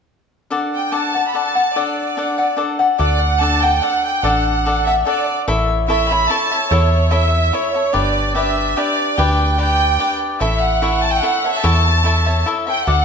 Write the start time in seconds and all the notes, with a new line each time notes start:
0.50 D4 A4 D5 F#5
0.74 G5
0.92 D4 A4 D5 F#5 A5
1.14 A4 D5 F#5
1.28 B5
1.34 D4 A4 D5 F#5 A5
1.55 A4 D5 F#5
1.75 D4 A4 D5 F#5
2.17 D4 A4 D5 F#5
2.38 A4 D5 F#5
2.57 D4 A4 D5 F#5
2.79 A4 D5 F#5
2.99 D2 D4 A4 D5 F#5
3.20 F#5
3.40 D4 A4 D5 F#5 A5
3.61 A4 D5 F#5 G5
3.82 D4 A4 D5 F#5
4.05 G5
4.23 A1 D4 A4 D5 F#5
4.65 D4 A4 D5 F#5
4.86 A4 D5 E5 F#5
5.06 D4 A4 D5 F#5
5.48 A1 E4 A4 C#5 E5
5.88 E4 A4 C#5 E5
6.10 A4 C#5 E5 B5
6.29 E4 A4 C#5 E5 A5
6.51 A4 C#5 E5
6.70 E2 E4 A4 C#5 E5
7.11 E4 A4 C#5 E5
7.53 E4 A4 C#5 E5
7.74 A4 C#5 E5
7.93 G1 D4 G4 B4 D5
8.35 D4 G4 B4 D5 E5
8.77 D4 G4 B4 D5
9.17 D2 D4 G4 B4 D5 G5
9.58 D4 G4 B4 D5 G5
9.99 D4 G4 B4 D5
10.40 A1 E4 A4 C#5 E5
10.61 F#5
10.82 E4 A4 C#5 E5
11.04 A5
11.12 G5
11.20 E4 A4 C#5 E5 F#5
11.44 A4 C#5 E5
11.52 E5
11.62 E2 E4 A4 C#5 E5 A5
12.04 E4 A4 C#5 E5
12.26 A4 C#5 E5
12.46 E4 A4 C#5 E5
12.67 A4 C#5 E5 G5
12.87 D2 D4 A4 D5 F#5